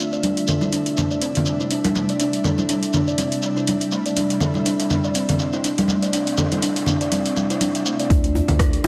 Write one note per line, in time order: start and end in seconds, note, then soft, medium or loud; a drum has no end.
0.00 0.19 D3 medium
0.00 0.19 A3 medium
0.00 0.19 F4 medium
0.00 8.06 E5 medium
0.13 0.22 D5 medium
0.13 shekere soft
0.23 8.06 C3 medium
0.23 8.06 G3 medium
0.23 0.36 D4 medium
0.23 4.13 D4 medium
0.23 closed hi-hat medium
0.23 mid tom medium
0.23 high conga medium
0.23 shekere soft
0.37 closed hi-hat soft
0.37 shekere soft
0.47 0.61 A4 medium
0.47 mid tom medium
0.47 low conga medium
0.47 shekere loud
0.61 0.72 E4 loud
0.61 high conga medium
0.61 shekere soft
0.73 0.85 D4 medium
0.73 closed hi-hat medium
0.73 mid tom medium
0.73 shekere medium
0.86 closed hi-hat soft
0.86 mid tom medium
0.86 shekere soft
0.97 1.10 D4 medium
0.97 mid tom medium
0.97 low conga medium
0.97 shekere medium
1.11 1.21 D5 medium
1.11 shekere soft
1.22 1.34 C4 medium
1.22 closed hi-hat medium
1.22 mid tom medium
1.22 shekere soft
1.35 closed hi-hat soft
1.35 low conga medium
1.35 shekere soft
1.46 mid tom medium
1.46 shekere medium
1.60 1.70 E4 loud
1.60 shekere soft
1.71 1.83 D4 medium
1.71 closed hi-hat medium
1.71 mid tom medium
1.71 shekere soft
1.84 closed hi-hat soft
1.84 high conga loud
1.84 shekere soft
1.95 2.03 A3 medium
1.95 mid tom medium
1.95 high conga loud
1.95 shekere medium
2.09 2.19 D5 medium
2.09 closed hi-hat soft
2.09 shekere soft
2.20 2.33 D4 medium
2.20 closed hi-hat medium
2.20 mid tom medium
2.20 shekere soft
2.33 closed hi-hat soft
2.33 shekere soft
2.44 2.58 A4 loud
2.44 mid tom medium
2.44 low conga medium
2.44 shekere medium
2.58 2.68 E4 medium
2.58 high conga medium
2.58 shekere soft
2.69 2.82 D4 medium
2.69 closed hi-hat medium
2.69 mid tom medium
2.69 shekere medium
2.83 closed hi-hat soft
2.83 shekere soft
2.93 3.07 D4 medium
2.93 mid tom medium
2.93 low conga medium
2.93 shekere medium
3.08 3.17 D5 medium
3.08 shekere soft
3.18 3.31 C4 medium
3.18 closed hi-hat medium
3.18 mid tom medium
3.18 high conga medium
3.18 shekere medium
3.32 closed hi-hat soft
3.32 shekere soft
3.42 mid tom medium
3.42 shekere medium
3.57 3.66 E4 loud
3.57 shekere soft
3.67 3.80 D4 medium
3.67 closed hi-hat medium
3.67 mid tom medium
3.67 high conga medium
3.67 shekere medium
3.80 closed hi-hat soft
3.80 shekere soft
3.92 4.00 A3 medium
3.92 mid tom medium
3.92 shekere medium
4.06 4.16 D5 medium
4.06 closed hi-hat soft
4.06 shekere soft
4.16 8.06 C4 medium
4.16 4.29 D4 medium
4.16 closed hi-hat medium
4.16 mid tom medium
4.16 high conga medium
4.16 shekere soft
4.30 closed hi-hat soft
4.30 mid tom medium
4.30 shekere soft
4.40 4.54 A4 medium
4.40 mid tom loud
4.40 low conga medium
4.40 shekere medium
4.54 4.65 E4 loud
4.54 mid tom medium
4.54 high conga medium
4.54 shekere soft
4.66 4.78 D4 medium
4.66 closed hi-hat medium
4.66 mid tom loud
4.66 shekere soft
4.80 closed hi-hat soft
4.80 mid tom medium
4.80 shekere soft
4.90 5.04 D4 medium
4.90 mid tom loud
4.90 low conga medium
4.90 shekere medium
5.04 5.14 D5 medium
5.04 mid tom medium
5.04 shekere soft
5.15 5.27 C4 medium
5.15 closed hi-hat medium
5.15 mid tom loud
5.15 shekere medium
5.28 closed hi-hat soft
5.28 mid tom medium
5.28 low conga medium
5.28 shekere soft
5.39 mid tom medium
5.39 mid tom loud
5.39 shekere medium
5.53 5.63 E4 loud
5.53 mid tom medium
5.53 shekere soft
5.64 5.77 D4 medium
5.64 closed hi-hat medium
5.64 mid tom loud
5.64 shekere soft
5.78 closed hi-hat soft
5.78 mid tom medium
5.78 high conga loud
5.78 shekere soft
5.88 5.96 A3 medium
5.88 mid tom loud
5.88 high conga loud
5.88 shekere medium
6.03 6.12 D5 medium
6.03 closed hi-hat soft
6.03 mid tom medium
6.03 shekere soft
6.13 6.26 D4 medium
6.13 closed hi-hat medium
6.13 mid tom medium
6.13 shekere soft
6.20 mid tom medium
6.27 closed hi-hat soft
6.27 mid tom medium
6.27 shekere soft
6.32 mid tom medium
6.38 6.51 A4 loud
6.38 mid tom loud
6.38 low conga medium
6.38 shekere medium
6.45 mid tom medium
6.51 6.62 E4 loud
6.51 closed hi-hat soft
6.51 mid tom loud
6.51 high conga medium
6.51 shekere soft
6.57 mid tom medium
6.62 6.75 D4 medium
6.62 closed hi-hat medium
6.62 mid tom loud
6.62 shekere medium
6.69 mid tom medium
6.76 closed hi-hat soft
6.76 mid tom medium
6.76 mid tom loud
6.76 shekere soft
6.82 mid tom medium
6.86 7.00 D4 medium
6.86 mid tom loud
6.86 low conga medium
6.86 shekere medium
6.94 mid tom loud
7.01 7.11 D5 medium
7.01 closed hi-hat soft
7.01 mid tom medium
7.01 shekere soft
7.06 mid tom medium
7.12 7.24 C4 medium
7.12 closed hi-hat medium
7.12 mid tom medium
7.12 mid tom loud
7.12 high conga medium
7.12 shekere soft
7.19 mid tom loud
7.25 closed hi-hat soft
7.25 mid tom medium
7.25 shekere soft
7.31 mid tom loud
7.36 mid tom loud
7.36 high conga medium
7.36 shekere medium
7.43 mid tom medium
7.50 7.60 E4 loud
7.50 closed hi-hat soft
7.50 mid tom medium
7.50 shekere soft
7.55 mid tom loud
7.61 7.74 D4 medium
7.61 closed hi-hat medium
7.61 mid tom loud
7.61 high conga medium
7.61 shekere medium
7.68 mid tom medium
7.75 closed hi-hat soft
7.75 mid tom medium
7.75 shekere soft
7.80 mid tom medium
7.86 7.93 A3 medium
7.86 mid tom loud
7.86 shekere loud
7.93 mid tom medium
8.00 8.09 D5 medium
8.00 closed hi-hat soft
8.00 mid tom medium
8.00 shekere soft
8.05 mid tom medium
8.10 8.41 D2 medium
8.10 8.87 D3 medium
8.10 8.87 A3 medium
8.10 8.18 D4 loud
8.10 8.87 F4 medium
8.10 8.87 E5 medium
8.10 kick loud
8.10 closed hi-hat medium
8.10 mid tom medium
8.10 djembe tone medium
8.24 8.34 F4 medium
8.24 closed hi-hat soft
8.35 djembe tone medium
8.48 8.78 D2 medium
8.48 closed hi-hat soft
8.48 low conga loud
8.59 8.67 A4 medium
8.59 kick loud
8.59 cross-stick medium
8.59 closed hi-hat medium
8.59 djembe tone medium
8.73 8.84 G4 medium
8.73 closed hi-hat soft
8.84 8.87 D4 medium
8.84 djembe slap loud
8.84 djembe tone loud